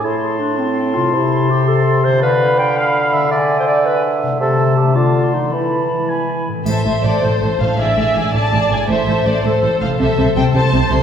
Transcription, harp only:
X:1
M:6/8
L:1/8
Q:3/8=109
K:Am
V:1 name="Harp"
[A,,CEA]6 | [C,CEA]6 | [D,B,FB]6 | [D,B,E^G]6 |
[C,A,EA]3 [D,A,DA]3 | [E,A,B,A]3 [E,^G,B,B]3 | [A,,A,CA]6 | [A,,^G,DB]6 |
[A,,A,Ec]6 | [C,A,Ec]6 |]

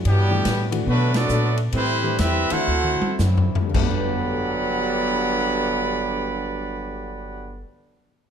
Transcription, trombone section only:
X:1
M:4/4
L:1/8
Q:"Swing" 1/4=105
K:G
V:1 name="Trombone section" clef=bass
[B,,E,G,]3 z [D,F,B,] [F,A,D]2 z | [E,G,C]2 [G,CE] [A,CF]3 z2 | [G,,D,F,B,]8- | [G,,D,F,B,]8 |]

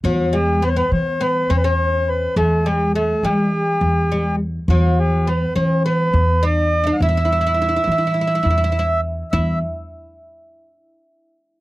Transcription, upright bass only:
X:1
M:4/4
L:1/8
Q:1/4=103
K:none
V:1 name="Upright bass" clef=bass
E,,3 E,2 E,,3 | E,,3 E,2 E,,3 | E,,3 E,2 E,,3 | E,,3 E,2 E,,3 |
E,, z6 z |]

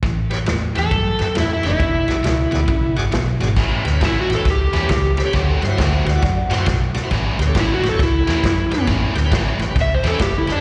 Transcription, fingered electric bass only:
X:1
M:4/4
L:1/8
Q:"Swing" 1/4=136
K:Amix
V:1 name="Fingered electric bass" clef=bass
A,,,2 E,, E,, G,, F,, E,, F,,, | E,,, B,,, C,, D,, B,,, ^G,,, B,,, G,,, | A,,, D,, A,,, A,,, C,, E,, C,,2 | D,, G,, D,, D,, F,, A,, B,,,2 |
A,,, D,, A,,, A,,, C,, E,, F,,2 | A,,, D,, A,,, A,,, C,, E,, F,,,2 |]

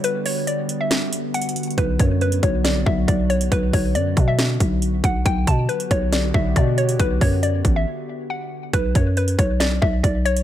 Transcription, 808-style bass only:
X:1
M:4/4
L:1/8
Q:1/4=138
K:Bm
V:1 name="808-style bass" clef=bass
z8 | B,,, F,,2 B,,,2 B,,, B,,,2 | B,,, B,,, F,, B,,2 B,,,2 B,,, | B,,, B,, z B,,,2 B,,, B,,2 |
B,,, F,,2 A,,, z4 | B,,, F,,2 B,,,2 B,,, B,,,2 |]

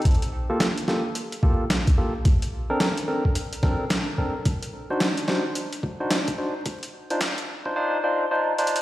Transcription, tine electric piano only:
X:1
M:4/4
L:1/16
Q:"Swing 16ths" 1/4=109
K:Gm
V:1 name="Tine electric piano"
z3 [B,FGA] z2 [B,FGA] z3 [B,FGA] z3 [B,FGA] z | z3 [CDAB] z2 [CDAB] z3 [CDAB] z3 [CDAB] z | z3 [DE^Fc] z2 [DEFc] z4 [DEFc] z2 [DEFc] z | z3 [DEFc] z3 [DEFc] [DEFc] z [DEFc] z [DEFc] z [DEFc] z |]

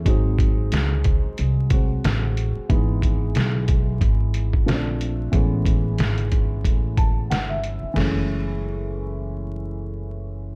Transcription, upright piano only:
X:1
M:4/4
L:1/16
Q:"Swing 16ths" 1/4=91
K:F#dor
V:1 name="Upright piano"
z16 | z16 | z8 z2 a2 f e3 | z16 |]
V:2 name="Upright piano"
[F,G,^B,D]8- [F,G,B,D]2 [F,G,B,F]6 | [E,G,B,D]12 [^E,A,^B,C=D]4 | [E,G,B,C]16 | [E,G,A,C]16 |]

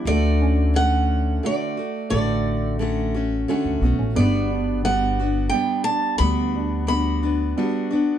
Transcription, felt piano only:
X:1
M:3/4
L:1/16
Q:1/4=88
K:D
V:1 name="Felt piano"
A,2 C2 A,4 [A,F]4 | A,4 A,4 [A,CF]2 B, C | B,2 D2 B,4 [B,D]2 D2 | B,2 D2 B,4 [B,DF]2 D2 |]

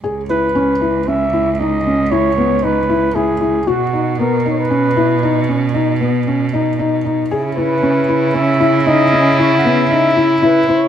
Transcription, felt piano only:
X:1
M:7/4
L:1/8
Q:1/4=116
K:C#m
V:1 name="Felt piano"
G E C E C E D C E B, D E E E | F D B, D C E D C D B, C D D D | G E C E C E D C E B, D E E E |]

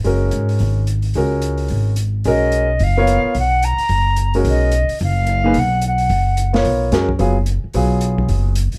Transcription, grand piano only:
X:1
M:4/4
L:1/8
Q:"Swing" 1/4=218
K:Db
V:1 name="Grand piano"
[A,DGB]4- [A,DGB] z3 | [A,DGB]4- [A,DGB] z3 | [K:Blyd] [G,CFA]3 z2 [B,EAc]3 | z6 z [G,CFA]- |
[G,CFA]2 z4 z [A,DGB] | z6 z [B,EAc]- | [B,EAc]2 [G,CFA] z [F,B,EG] z3 | [F,B,EG]4- [F,B,EG] z3 |]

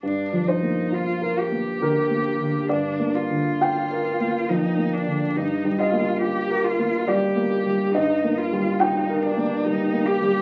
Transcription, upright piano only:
X:1
M:3/4
L:1/8
Q:1/4=69
K:Gm
V:1 name="Upright piano"
z c3 B2 | d2 g3 z | z e3 d2 | e2 g3 z |]
V:2 name="Upright piano"
(3G,, F, B, (3F B B, (3D, B, D, | (3G,, B, D, (3F B B, (3F, B, D, | (3G,, G, B, (3F B B, (3G, B, G, | (3G,, B, G, (3F B B, (3G, B, G, |]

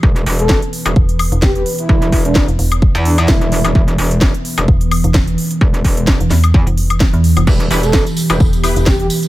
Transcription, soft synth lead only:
X:1
M:4/4
L:1/16
Q:"Swing 16ths" 1/4=129
K:Em
V:1 name="Soft synth lead"
z3 A2 z6 z G G z E- | E3 D2 z4 z D E4- E- | E z12 z3 | z16 |
z3 A2 z6 z G G z2 |]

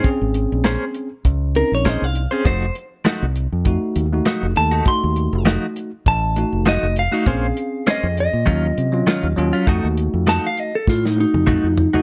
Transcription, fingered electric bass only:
X:1
M:4/4
L:1/16
Q:"Swing 16ths" 1/4=100
K:Fphr
V:1 name="Fingered electric bass" clef=bass
z A,,,2 B,,,2 z3 D,,3 B,,,2 C,,2 z | F,,,2 z3 C,,2 F,,2 z E,,2 z F,,, E,,2 | z E,,2 F,,,2 z3 =A,,,3 F,,,2 F,,,2 z | B,,,2 z3 F,,2 B,, E,,2 C,2 z E,, E,, z |
F,, E,,2 F,,2 z3 =A,,3 F,,2 F,,2 z |]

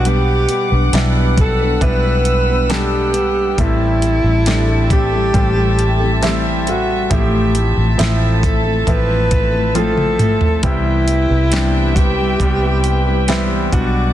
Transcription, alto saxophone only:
X:1
M:4/4
L:1/8
Q:1/4=68
K:Clyd
V:1 name="Alto saxophone"
G2 z A B2 G2 | E3 G3 z F | G2 z A B2 A2 | E3 G3 z F |]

